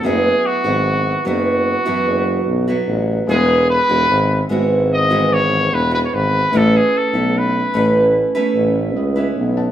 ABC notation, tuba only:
X:1
M:4/4
L:1/16
Q:1/4=74
K:E
V:1 name="Tuba" clef=bass
F,,,2 z G,,,3 F,,,3 z F,,,2 B,,,2 A,,,2 | E,,,3 E,,, G,,,2 G,,,6 E,,,2 G,,,2 | A,,,2 z B,,,3 A,,,3 z A,,,2 C,,2 B,,,2 |]